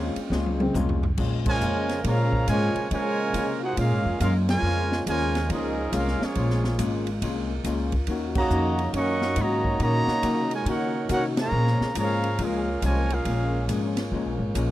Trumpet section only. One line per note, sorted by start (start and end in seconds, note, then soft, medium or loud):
1.49 2.02 F4 medium
1.49 2.02 A#4 medium
1.49 2.02 C#5 medium
1.49 2.02 G#5 loud
2.07 2.49 G#4 medium
2.07 2.49 C#5 medium
2.07 2.49 F5 loud
2.07 2.49 A#5 loud
2.50 2.89 F4 medium
2.50 2.89 A#4 medium
2.50 2.89 C#5 loud
2.50 2.89 G#5 loud
2.93 3.59 F4 loud
2.93 3.59 A#4 loud
2.93 3.59 C#5 loud
2.93 3.59 G#5 loud
3.64 3.78 D#4 medium
3.64 3.78 G#4 medium
3.64 3.78 C5 medium
3.64 3.78 F#5 loud
3.80 4.19 C#4 medium
3.80 4.19 G#4 medium
3.80 4.19 A#4 medium
3.80 4.19 F5 loud
4.22 4.35 C#4 medium
4.22 4.34 G#4 medium
4.22 4.35 A#4 medium
4.22 4.34 F5 loud
4.50 5.04 F4 loud
4.50 5.04 A#4 loud
4.50 5.03 C#5 medium
4.50 5.03 G#5 loud
5.09 5.48 F4 medium
5.09 5.48 A#4 loud
5.09 5.48 C#5 medium
5.09 5.48 G#5 loud
5.52 5.94 C#4 medium
5.52 5.94 G#4 medium
5.52 5.94 A#4 medium
5.52 5.94 D#5 medium
5.96 6.22 C#4 medium
5.96 6.22 G#4 medium
5.96 6.22 A#4 medium
5.96 6.23 F5 loud
6.25 6.81 A#3 medium
6.25 6.81 F4 medium
6.25 6.81 G#4 medium
6.25 6.81 C#5 medium
8.39 8.91 F#4 medium
8.39 8.92 C#5 medium
8.39 8.92 D#5 loud
8.39 8.91 A#5 loud
8.97 9.39 A#4 medium
8.97 9.39 D#5 medium
8.97 9.39 F#5 medium
8.97 9.39 C#6 loud
9.41 9.82 F#4 medium
9.41 9.82 C#5 loud
9.41 9.82 D#5 medium
9.41 9.82 A#5 loud
9.83 10.49 F#4 medium
9.83 10.49 C#5 medium
9.83 10.49 D#5 medium
9.83 10.49 A#5 loud
10.54 10.68 F4 medium
10.54 10.68 A#4 medium
10.54 10.68 C#5 medium
10.54 10.68 G#5 loud
10.69 11.08 D#4 medium
10.69 11.08 A#4 medium
10.69 11.08 C#5 medium
10.69 11.08 F#5 medium
11.13 11.25 D#4 medium
11.13 11.25 A#4 medium
11.13 11.25 C#5 medium
11.13 11.25 F#5 loud
11.41 11.93 G#4 medium
11.41 11.93 C#5 loud
11.41 11.93 F5 medium
11.41 11.94 A#5 loud
11.99 12.38 G#4 medium
11.99 12.38 C#5 medium
11.99 12.38 F5 medium
11.99 12.38 A#5 loud
12.43 12.81 C#4 medium
12.43 12.81 G#4 medium
12.43 12.81 A#4 medium
12.43 12.81 F5 medium
12.86 13.12 F4 medium
12.86 13.12 A#4 medium
12.86 13.12 C#5 medium
12.86 13.12 G#5 loud
13.13 13.70 C#4 medium
13.13 13.70 G#4 medium
13.13 13.70 A#4 medium
13.13 13.70 F5 medium